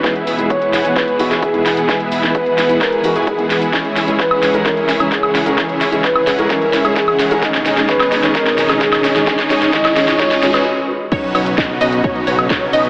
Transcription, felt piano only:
\new Staff \with { instrumentName = "Felt piano" } { \time 4/4 \key b \major \tempo 4 = 130 <e gis b gis'>16 r8 <e gis b gis'>16 r8. <e gis b b'>8. <e gis b fis'>16 r8 <e gis b gis'>8. | <e gis b gis'>16 r8 <e gis b gis'>16 r8. <e gis b b'>8. <e gis b fis'>16 r8 <e gis b gis'>8. | <e gis cis' gis'>16 r8 <e gis cis' gis'>16 r8. <e gis cis' ais'>16 <e gis cis' gis'>16 r8 <e gis cis' gis'>16 r8. <e gis cis' ais'>16 | <e gis cis' gis'>16 r8 <e gis cis' gis'>16 r8. <e gis cis' ais'>16 <e gis cis' gis'>16 r8 <e gis cis' gis'>16 r8. <e gis cis' ais'>16 |
<dis gis cis' gis'>16 r8 <dis gis cis' gis'>16 <dis gis cis' gis'>16 r8 <dis gis cis' gis'>16 <dis gis cis' gis'>16 r8 <dis gis cis' gis'>16 <dis gis cis' gis'>16 r8 <dis gis cis' gis'>16 | <dis gis cis' gis'>16 r16 <dis gis cis' gis'>16 r16 <dis gis cis' gis'>16 r16 <dis gis cis' gis'>16 r16 <dis gis cis' gis'>16 r16 <dis gis cis' gis'>16 r4 r16 | r1 | }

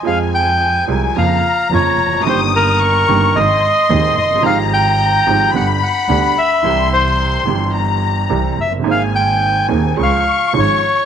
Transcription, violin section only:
\new Staff \with { instrumentName = "Violin section" } { \time 4/4 \key f \minor \tempo 4 = 109 aes''2 bes''2 | ees'''4 des'''4 c'''2 | bes''2 b''2 | c'''2 bes''4. r8 |
aes''2 des'''2 | }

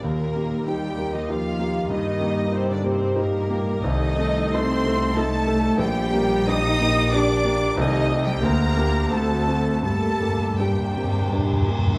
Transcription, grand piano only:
\new Staff \with { instrumentName = "Grand piano" } { \time 3/4 \key g \minor \tempo 4 = 92 ees,8 <bes g'>8 <ees' g'>8 <bes g'>8 <ees' g'>8 <bes g'>8 | g,8 <bes g'>8 <ees' g'>8 <bes g'>8 <ees' g'>8 <bes g'>8 | c,8 <a a'>8 <ees' a'>8 <a a'>8 <ees' a'>8 <a a'>8 | bes,,8 <bes g'>8 <d' g'>8 <bes g'>8 <d' g'>8 <bes g'>8 |
c,8 <a g'>8 d,8 <bes g'>8 d,8 <c' fis'>8 | g,8 <bes g'>8 <d' g'>8 <bes g'>8 <d' g'>8 <bes g'>8 | }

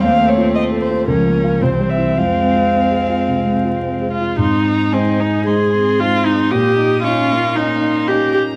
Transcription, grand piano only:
\new Staff \with { instrumentName = "Grand piano" } { \time 4/4 \key f \minor \tempo 4 = 112 \tuplet 3/2 { ees,8 a8 f'8 c''8 a'8 f'8 des,8 bes8 <f' f''>8 c,8 g8 <e' c''>8 } | \tuplet 3/2 { f,8 aes8 f'8 c''8 aes'8 f'8 c8 aes8 f'8 c''8 aes'8 f'8 } | \key aes \major aes,4 <aes ees' c''>4 <aes ees' c''>4 <aes ees' c''>4 | bes,4 <des' ees' ees''>4 <des' ees' ees''>4 <des' ees' ees''>4 | }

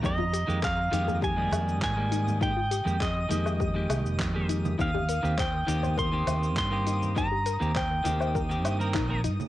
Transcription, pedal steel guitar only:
\new Staff \with { instrumentName = "Pedal steel guitar" } { \time 4/4 \key f \minor \tempo 4 = 101 ees''4 f''4 aes''4 aes''4 | g''4 ees''2~ ees''8 r8 | f''4 g''4 c'''4 c'''4 | bes''4 g''2~ g''8 r8 | }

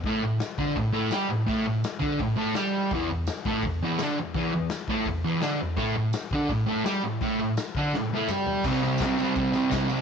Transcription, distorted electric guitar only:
\new Staff \with { instrumentName = "Distorted electric guitar" } { \clef bass \time 4/4 \key a \lydian \tempo 4 = 167 <a, a>8 a,8 r8 <d d'>8 a,8 <a, a>8 <g g'>8 a,8 | <a, a>8 a,8 r8 <d d'>8 a,8 <a, a>8 <g g'>4 | <e, e>8 e,8 r8 <a, a>8 e,8 <e, e>8 <d d'>8 e,8 | <e, e>8 e,8 r8 <a, a>8 e,8 <e, e>8 <d d'>8 e,8 |
<a, a>8 a,8 r8 <d d'>8 a,8 <a, a>8 <g g'>8 a,8 | <a, a>8 a,8 r8 <d d'>8 a,8 <a, a>8 <g g'>4 | <c g c'>8 <g c'>8 <c g c'>8 <c g c'>8 <c g c'>8 <c g c'>8 <c g c'>8 <g c'>8 | }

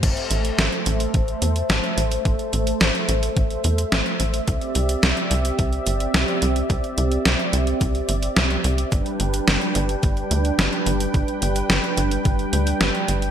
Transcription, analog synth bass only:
\new Staff \with { instrumentName = "Analog synth bass" } { \clef bass \time 4/4 \key a \minor \tempo 4 = 108 a,,8 a,,8 a,,8 a,,8 a,,8 e,8 a,,8 a,,8 | a,,8 a,,8 a,,8 a,,8 a,,8 e,8 a,,8 a,,8 | c,8 c,8 c,8 c,8 c,8 g,,8 c,8 c,8 | c,8 c,8 c,8 c,8 c,8 g,,8 c,8 c,8 |
g,,8 g,,8 g,,8 g,,8 g,,8 d,8 g,,8 g,,8 | g,,8 g,,8 g,,8 g,,8 g,,8 d,8 g,,8 g,,8 | }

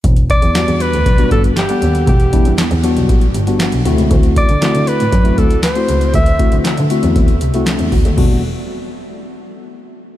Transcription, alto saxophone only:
\new Staff \with { instrumentName = "Alto saxophone" } { \time 4/4 \key e \minor \tempo 4 = 118 r8 d''4 b'4 a'8 g'4 | g'4 r2. | r8 d''4 b'4 a'8 c''4 | e''4 r2. |
r1 | }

